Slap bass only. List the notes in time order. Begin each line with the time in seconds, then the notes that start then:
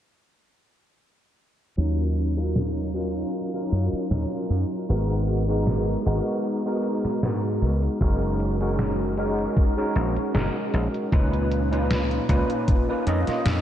1.78 D#2
3.72 F#2
3.93 muted slap bass stroke
4.11 D#2
4.50 F#2
4.89 G#1
6.06 G#1
7.05 muted slap bass stroke
7.23 G#2
7.62 C#2
8.01 F#1
9.96 A#1
10.17 muted slap bass stroke
10.35 F#1
10.74 A#1
11.12 C#2
12.29 C#2
13.07 F2
13.28 muted slap bass stroke
13.46 F2